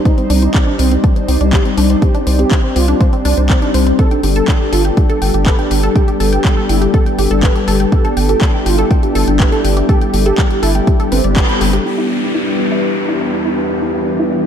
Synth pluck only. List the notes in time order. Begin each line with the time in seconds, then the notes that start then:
0.05 C5
0.18 C4
0.30 D4
0.42 C5
0.55 C4
0.67 D4
0.79 C5
0.92 C4
1.04 D4
1.16 C5
1.28 C4
1.41 D4
1.53 C5
1.65 C4
1.78 D4
1.90 C5
2.02 C4
2.15 D4
2.27 C5
2.39 C4
2.51 D4
2.64 C5
2.76 C4
2.88 D4
3.01 C5
3.13 C4
3.25 D4
3.38 C5
3.50 C4
3.62 D4
3.74 C5
3.87 C4
3.99 A4
4.11 G5
4.24 G4
4.36 A4
4.48 G5
4.60 G4
4.73 A4
4.85 G5
4.97 G4
5.10 A4
5.22 G5
5.34 G4
5.46 A4
5.59 G5
5.71 G4
5.83 A4
5.96 G5
6.08 G4
6.20 A4
6.33 G5
6.45 G4
6.57 A4
6.69 G5
6.82 G4
6.94 A4
7.06 G5
7.18 G4
7.31 A4
7.43 G5
7.55 G4
7.68 A4
7.80 G5
7.92 G4
8.05 A4
8.17 G5
8.29 G4
8.41 A4
8.54 G5
8.66 G4
8.78 A4
8.91 G5
9.03 G4
9.15 A4
9.28 G5
9.40 G4
9.52 A4
9.64 G5
9.77 G4
9.89 A4
10.01 G5
10.14 G4
10.26 A4
10.38 G5
10.51 G4
10.63 A4
10.75 G5
10.87 G4
11.00 A4
11.12 B4
11.24 D5
11.37 G4
11.49 B5
11.61 G4
11.73 G4
11.86 E4
11.98 E4
12.10 E5
12.23 E4
12.35 E4
12.47 E5
12.60 E4
12.72 E4
12.84 E5
12.97 E4
13.09 E4
13.21 E5
13.33 E4
13.46 E4
13.58 E5
13.70 E4
13.82 E4
13.95 E5
14.07 E4
14.19 E4
14.32 E5